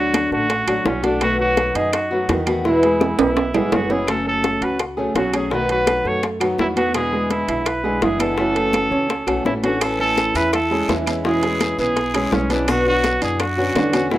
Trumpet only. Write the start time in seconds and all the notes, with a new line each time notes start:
Already playing: F#4
0.32 F#4
0.86 C#4
1.04 D4
1.22 F#4
1.40 F#4
1.76 G#4
1.94 F#4
2.66 E4
3.20 E4
3.74 F#4
3.91 G#4
4.09 A4
4.28 A4
4.64 B4
5.17 F#4
5.35 G#4
5.53 B4
5.71 B4
6.07 C#5
6.60 E4
6.77 F#4
6.95 G#4
7.31 E4
7.67 B4
8.03 G#4
8.21 A4
9.45 E4
9.64 F#4
9.82 A4
10.00 A4
10.36 B4
10.54 A4
11.26 G#4
11.80 G#4
12.33 C#4
12.51 D4
12.69 F#4
12.88 F#4
13.23 G#4
13.40 F#4
14.13 E4